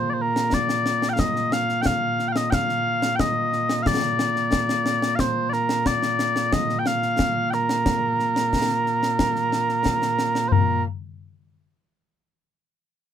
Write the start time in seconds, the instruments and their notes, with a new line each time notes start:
Already playing: bagpipes A#2 A#3
0.10 bagpipes C5 D5
0.22 bagpipes A#4
0.36 snare
0.53 bagpipes D5, concert bass drum, snare
0.69 snare
0.86 snare
1.02 snare
1.09 bagpipes G5
1.13 bagpipes F5
1.19 bagpipes D#5, concert bass drum, snare
1.36 snare
1.52 bagpipes F5, snare
1.69 snare
1.82 bagpipes G5, concert bass drum, snare
1.86 bagpipes F5
2.19 snare
2.28 bagpipes G5
2.32 bagpipes F5, snare
2.37 bagpipes D#5
2.50 bagpipes F5 G5, concert bass drum, snare
2.69 snare
3.02 snare
3.16 bagpipes G5, concert bass drum, snare
3.20 bagpipes D#5
3.53 snare
3.69 snare
3.83 bagpipes F5, concert bass drum, snare
3.87 bagpipes D5
4.03 snare
4.19 snare
4.36 snare
4.53 concert bass drum, snare
4.69 snare
4.86 snare
5.02 snare
5.16 bagpipes F5, concert bass drum, snare
5.20 bagpipes C5
5.49 bagpipes A#4 D5, snare
5.69 snare
5.86 bagpipes D5, concert bass drum, snare
6.03 snare
6.19 snare
6.36 snare
6.53 bagpipes D#5, concert bass drum, snare
6.69 snare
6.79 bagpipes G5
6.86 bagpipes F5, snare
7.02 snare
7.19 concert bass drum, snare
7.50 bagpipes A#4 G5, snare
7.69 snare
7.86 concert bass drum, snare
8.20 snare
8.36 snare
8.53 concert bass drum, snare
8.70 snare
8.86 snare
9.03 snare
9.19 concert bass drum, snare
9.36 snare
9.52 snare
9.69 snare
9.86 concert bass drum, snare
10.02 snare
10.19 snare
10.35 snare
10.48 bagpipes A#4 C5, mid tom